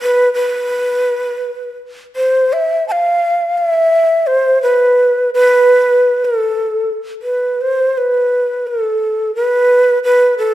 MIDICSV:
0, 0, Header, 1, 2, 480
1, 0, Start_track
1, 0, Tempo, 724638
1, 463, Time_signature, 2, 2, 24, 8
1, 1917, Tempo, 705882
1, 4317, Tempo, 756620
1, 5277, Tempo, 693642
1, 7079, End_track
2, 0, Start_track
2, 0, Title_t, "Shakuhachi"
2, 0, Program_c, 0, 77
2, 14, Note_on_c, 0, 71, 73
2, 218, Note_off_c, 0, 71, 0
2, 225, Note_on_c, 0, 71, 68
2, 1160, Note_off_c, 0, 71, 0
2, 1431, Note_on_c, 0, 72, 62
2, 1676, Note_on_c, 0, 76, 69
2, 1686, Note_off_c, 0, 72, 0
2, 1905, Note_off_c, 0, 76, 0
2, 1909, Note_on_c, 0, 81, 66
2, 1933, Note_on_c, 0, 77, 71
2, 1940, Note_off_c, 0, 81, 0
2, 2381, Note_on_c, 0, 76, 76
2, 2392, Note_off_c, 0, 77, 0
2, 2851, Note_on_c, 0, 72, 71
2, 2861, Note_off_c, 0, 76, 0
2, 3091, Note_off_c, 0, 72, 0
2, 3095, Note_on_c, 0, 71, 63
2, 3555, Note_off_c, 0, 71, 0
2, 3581, Note_on_c, 0, 71, 77
2, 4196, Note_on_c, 0, 69, 58
2, 4206, Note_off_c, 0, 71, 0
2, 4636, Note_off_c, 0, 69, 0
2, 4824, Note_on_c, 0, 71, 49
2, 5070, Note_on_c, 0, 72, 54
2, 5080, Note_off_c, 0, 71, 0
2, 5304, Note_on_c, 0, 71, 60
2, 5315, Note_off_c, 0, 72, 0
2, 5786, Note_on_c, 0, 69, 60
2, 5796, Note_off_c, 0, 71, 0
2, 6252, Note_off_c, 0, 69, 0
2, 6256, Note_on_c, 0, 71, 74
2, 6697, Note_off_c, 0, 71, 0
2, 6733, Note_on_c, 0, 71, 76
2, 6946, Note_off_c, 0, 71, 0
2, 6970, Note_on_c, 0, 69, 74
2, 7079, Note_off_c, 0, 69, 0
2, 7079, End_track
0, 0, End_of_file